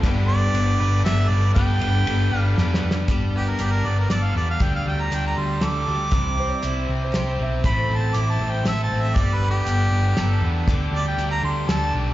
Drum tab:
RD |x-----x-----x-----|x--x--x-----------|------------------|------------------|
HH |------------------|------------------|x-----x-----x-----|x-----x-----x-----|
SD |------------o-----|------------o-o-o-|------------o-----|------------o-----|
BD |o-----------------|o-----------------|o-----------------|o-----------------|

RD |------------------|------------------|------------------|------------------|
HH |x-----x-----x-----|x-----x-----x-----|x-----x-----x-----|x-----x-----x-----|
SD |------------o-----|------------o-----|------------o-----|------------o-----|
BD |o-----------------|o-----------------|o-----------------|o-----------------|